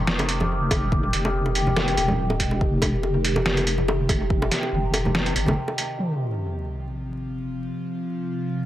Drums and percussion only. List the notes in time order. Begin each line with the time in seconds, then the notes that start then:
0.07 snare
0.19 closed hi-hat, high bongo
0.29 closed hi-hat
0.40 high bongo, high conga
0.71 kick, closed hi-hat, high bongo
0.92 kick, high bongo
1.13 closed hi-hat
1.25 high bongo
1.46 high bongo
1.55 closed hi-hat
1.67 high conga, low conga
1.76 snare, high bongo
1.88 closed hi-hat
1.98 closed hi-hat, high bongo
2.08 high conga, low conga
2.30 high bongo
2.40 kick, closed hi-hat
2.51 high bongo
2.61 kick
2.82 kick, closed hi-hat, high bongo
3.03 high bongo
3.25 closed hi-hat
3.36 high bongo, high conga
3.46 snare
3.57 closed hi-hat, high bongo
3.67 closed hi-hat
3.78 high conga
3.88 high bongo
4.09 kick, closed hi-hat, high bongo
4.30 kick
4.42 high bongo
4.51 snare, closed hi-hat
4.63 high bongo
4.94 closed hi-hat, high bongo
5.05 high conga, low conga
5.15 snare, high bongo
5.26 closed hi-hat
5.36 closed hi-hat
5.46 high bongo, high conga, low conga
5.68 high bongo
5.78 closed hi-hat